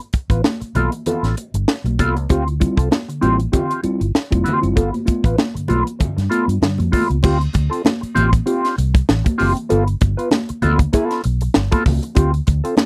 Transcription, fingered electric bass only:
0.30 0.40 A1 medium
0.61 muted fingered electric bass stroke soft
0.75 0.88 B1 medium
1.23 1.33 A1 medium
1.54 1.64 G1 medium
1.84 1.99 B1 medium
1.99 2.16 C2 medium
2.16 2.26 C#2 medium
2.30 2.65 D2 medium
2.77 2.87 C2 medium
3.23 3.45 A1 medium
3.84 muted fingered electric bass stroke soft
4.01 4.11 G1 medium
4.32 4.42 F1 medium
4.63 4.73 F#1 medium
4.77 4.89 G1 loud
5.24 5.34 A1 medium
5.55 muted fingered electric bass stroke soft
5.69 5.82 B1 medium
6.17 6.27 G2 medium
6.48 6.58 G2 medium
6.62 6.80 G2 medium
6.79 6.89 F2 medium
7.10 7.20 C#2 medium
7.24 7.46 D2 loud
7.55 7.67 D2 medium
8.03 muted fingered electric bass stroke soft
8.17 8.39 A1 loud
8.78 9.00 C2 medium
9.09 9.21 A1 medium
9.40 9.52 F#1 medium
9.72 9.93 G1 loud
10.02 10.14 G1 medium
10.50 muted fingered electric bass stroke soft
10.63 10.85 D2 medium
11.25 11.47 B1 medium
11.56 11.68 G1 loud
11.86 11.98 C#2 medium
12.17 12.39 D2 loud
12.48 12.60 D2 loud

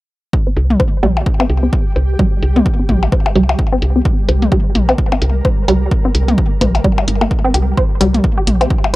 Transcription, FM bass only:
0.57 0.76 C2 medium
1.03 1.23 A#1 medium
1.50 1.69 C2 loud
1.96 2.16 C2 medium
2.43 2.62 C2 medium
2.89 3.09 A#1 medium
3.36 3.55 C2 loud
3.82 4.02 C2 medium
4.29 4.48 C2 medium
4.75 4.95 A#1 medium
5.22 5.41 C2 loud
5.68 5.88 C2 medium
6.15 6.34 C2 medium
6.61 6.81 A#1 medium
7.08 7.27 G1 loud
7.54 7.74 C2 medium
8.01 8.20 C2 medium
8.47 8.67 A#1 medium

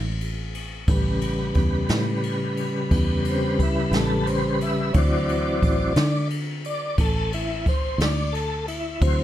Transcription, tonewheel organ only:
0.89 4.91 C#3 medium
0.89 4.92 G3 soft
0.89 4.92 B4 medium
3.29 3.60 C4 medium
3.63 3.94 E4 medium
3.94 4.27 A4 medium
4.26 4.60 C5 medium
4.62 4.94 E5 medium
4.93 5.93 E3 soft
4.93 5.93 F#3 soft
4.93 5.93 C4 medium
4.93 4.97 C#5 medium
4.98 6.28 D5 medium
6.66 6.98 D5 medium
7.00 7.32 A4 medium
7.34 7.66 E4 medium
7.69 8.00 C5 medium
8.03 8.34 D5 medium
8.33 8.66 A4 medium
8.68 9.01 E4 medium
9.02 9.24 E3 medium
9.02 9.24 F#3 soft
9.02 9.24 C4 medium
9.02 9.24 C5 medium

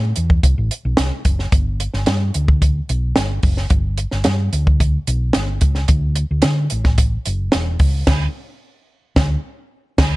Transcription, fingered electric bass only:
0.00 0.12 A2 medium
0.17 0.39 E2 medium
0.44 0.55 C2 medium
0.58 0.69 A1 medium
0.85 0.96 B1 medium
0.99 1.10 C2 medium
1.25 1.48 F#1 medium
1.52 1.86 G1 medium
1.94 2.05 G1 medium
2.08 2.30 G2 medium
2.35 2.79 D2 medium
2.90 3.12 B1 medium
3.16 3.38 G1 medium
3.44 3.66 F#1 medium
3.71 4.04 G1 medium
4.12 4.23 G1 medium
4.26 4.48 G2 loud
4.53 4.97 D2 medium
5.08 5.30 B1 medium
5.35 5.57 G1 medium
5.62 5.84 C#2 medium
5.89 6.23 D2 medium
6.31 6.42 D2 medium
6.45 6.66 D3 medium
6.72 7.16 A1 medium
7.27 7.49 F#1 medium
7.54 7.76 E1 medium
7.80 8.02 C#2 medium
8.08 8.26 D2 medium
9.17 9.35 D2 medium
9.99 10.16 D2 medium

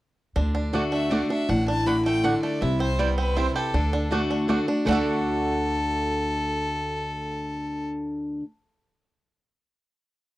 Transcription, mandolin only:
0.74 0.83 A3 medium
0.74 0.83 F#4 medium
0.74 0.83 D5 medium
0.74 0.83 F#5 medium
1.11 1.20 A3 medium
1.11 1.20 F#4 medium
1.11 1.21 D5 medium
1.11 1.21 F#5 loud
1.87 1.96 A3 medium
1.87 1.96 F#4 medium
1.87 1.96 D5 medium
1.87 1.96 F#5 loud
2.24 2.33 A3 medium
2.24 2.33 F#4 medium
2.24 2.33 D5 medium
2.24 2.33 F#5 medium
2.99 3.08 C4 medium
2.99 3.08 E4 medium
2.99 3.09 C5 loud
2.99 3.09 G5 loud
3.37 3.46 C4 medium
3.37 3.46 E4 medium
3.37 3.46 C5 medium
3.37 3.46 G5 loud
4.11 4.21 A3 medium
4.11 4.21 F#4 medium
4.11 4.21 D5 loud
4.11 4.21 F#5 loud
4.49 4.58 A3 medium
4.49 4.58 F#4 medium
4.49 4.58 D5 medium
4.49 4.59 F#5 loud
4.86 8.43 A3 medium
4.86 8.44 F#4 medium
4.86 8.45 D5 medium
4.86 8.46 F#5 medium

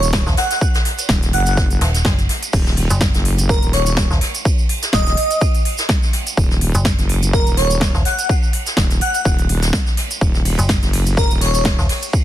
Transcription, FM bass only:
0.27 0.36 D#1 loud
1.81 2.04 D#1 medium
2.05 2.28 F#1 medium
2.91 3.12 F#1 loud
4.11 4.20 D#1 loud
6.75 6.97 F#1 loud
7.95 8.04 D#1 loud
10.59 10.80 F#1 loud
11.79 11.88 D#1 loud

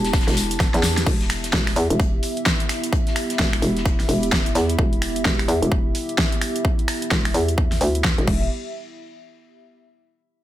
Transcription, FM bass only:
0.00 0.25 E1 loud
0.28 0.72 E1 loud
0.74 1.05 E2 loud
1.06 1.52 E1 loud
1.53 1.75 E1 loud
1.76 1.88 E2 medium
1.90 2.21 E1 loud
3.39 3.61 E1 loud
3.62 4.07 E1 medium
4.09 4.54 E1 medium
4.55 4.77 E2 medium
4.79 5.24 E1 medium
5.25 5.47 E1 loud
5.48 5.60 E2 medium
5.62 5.93 E1 loud
7.11 7.33 E1 medium
7.34 7.79 E2 loud
7.81 8.16 D2 loud
8.18 8.27 E1 loud
8.28 8.49 E1 loud

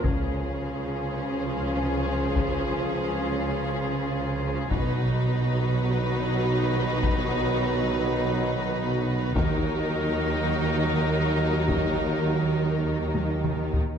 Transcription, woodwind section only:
0.04 4.70 C#4 medium
0.04 4.67 F4 medium
0.04 4.71 G#4 medium
0.04 4.66 F5 medium
4.71 9.35 D#4 medium
4.71 9.34 F#4 medium
4.71 9.37 B4 medium
4.71 9.35 D#5 medium
9.35 13.69 D#4 medium
9.35 13.69 F#4 loud
9.35 13.73 A#4 medium
9.35 13.69 D#5 loud

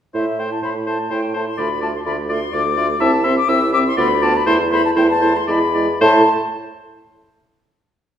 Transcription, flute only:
0.14 0.40 E5 medium
0.39 0.53 G5 soft
0.52 0.62 A5 soft
0.63 0.69 B5 soft
0.86 1.12 A5 medium
1.11 1.34 G5 medium
1.35 1.40 A5 medium
1.47 1.60 C6 medium
1.58 1.81 B5 medium
1.82 1.87 A5 medium
1.95 2.00 C6 medium
2.06 2.12 B5 medium
2.30 2.55 C6 medium
2.53 3.01 D6 medium
3.00 3.25 A5 medium
3.24 3.36 C6 medium
3.37 3.50 D6 medium
3.48 3.72 E6 medium
3.73 3.79 D6 loud
3.87 3.98 C6 medium
3.98 4.24 B5 medium
4.22 4.38 A5 medium
4.36 4.46 B5 medium
4.47 4.53 C6 loud
4.71 4.83 B5 medium
4.85 4.90 A5 medium
4.97 5.02 G5 medium
5.09 5.38 A5 medium
5.36 5.48 C6 medium
5.49 6.01 B5 medium
6.01 6.30 A5 loud

